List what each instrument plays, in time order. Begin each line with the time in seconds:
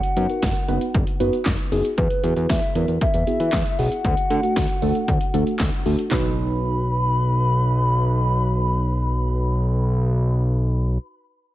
Already playing: soft synth lead F#5
0.03 closed hi-hat
0.17 analog synth bass F#2, synth keys B3 D#4 F#4 B4, closed hi-hat
0.30 synth keys B3 D#4 F#4 A#4, closed hi-hat
0.42 analog synth bass F#1, kick, snare, closed hi-hat
0.56 closed hi-hat
0.68 analog synth bass F#1, synth keys B3 D#4 F#4 B4, closed hi-hat
0.81 closed hi-hat
0.94 analog synth bass F#1, kick, closed hi-hat
1.07 closed hi-hat
1.20 analog synth bass F#1, synth keys B3 D#4 F#4 B4, closed hi-hat
1.33 closed hi-hat
1.46 analog synth bass F#1, kick, snare, clap, closed hi-hat
1.59 closed hi-hat
1.72 analog synth bass F#1, synth keys B3 D#4 F#4 G#4, open hi-hat
1.85 closed hi-hat
1.98 analog synth bass E2, soft synth lead B4, kick, closed hi-hat
2.10 closed hi-hat
2.24 analog synth bass E2, synth keys B3 E4 F#4 G#4, closed hi-hat
2.36 analog synth bass E2, synth keys B3 E4 F#4 G#4, closed hi-hat
2.49 analog synth bass E2, soft synth lead E5, kick, snare, closed hi-hat
2.62 closed hi-hat
2.75 analog synth bass E2, synth keys B3 E4 F#4 A#4, soft synth lead E5, closed hi-hat
2.88 analog synth bass E2, closed hi-hat
3.01 soft synth lead E5, kick, closed hi-hat
3.14 analog synth bass E2, closed hi-hat
3.27 synth keys B3 E4 F#4 G#4, closed hi-hat
3.40 analog synth bass E3, closed hi-hat
3.53 analog synth bass E2, kick, snare, clap, closed hi-hat
3.66 closed hi-hat
3.79 analog synth bass B1, synth keys B3 E4 F#4 G#4, soft synth lead F#5, open hi-hat
3.92 closed hi-hat
4.05 analog synth bass D2, kick, closed hi-hat
4.17 closed hi-hat
4.30 analog synth bass D3, synth keys A3 D4 F#4 A4, closed hi-hat
4.43 synth keys A3 D4 F#4 A4, closed hi-hat
4.56 analog synth bass D2, kick, snare, closed hi-hat
4.69 closed hi-hat
4.82 analog synth bass D2, synth keys A3 D4 F#4 A4, open hi-hat
4.95 closed hi-hat
5.08 analog synth bass D2, kick, closed hi-hat
5.21 closed hi-hat
5.34 analog synth bass D2, synth keys A3 D4 F#4 A4, closed hi-hat
5.47 closed hi-hat
5.60 analog synth bass D2, kick, snare, clap, closed hi-hat
5.73 closed hi-hat
5.86 analog synth bass D2, synth keys A3 D4 F#4 A4, open hi-hat
5.99 closed hi-hat
6.09 analog synth bass B1, synth keys D#4 F#4, soft synth lead B5, kick, snare, clap
6.13 synth keys B4